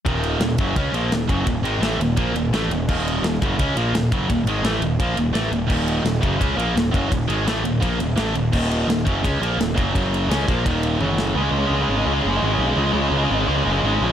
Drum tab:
CC |--------|--------|x-------|--------|
RD |xxxxxxxx|xxxxxxxx|-xxxxxxx|xxxxxxxx|
SD |--o---o-|--o---o-|--o---o-|--o---o-|
T1 |--------|--------|--------|--------|
BD |o--oo--o|o---o---|o--oo--o|o---o---|

CC |x-------|--------|x-------|--------|
RD |-xxxxxxx|xxxxxxxx|-xxxxxxx|xxxxxx--|
SD |--o---o-|--o---o-|--o---o-|--o----o|
T1 |--------|--------|--------|------o-|
BD |o--oo--o|o---o---|o--oo--o|o--oo---|

CC |--------|--------|
RD |--------|--------|
SD |--------|--------|
T1 |--------|--------|
BD |--------|--------|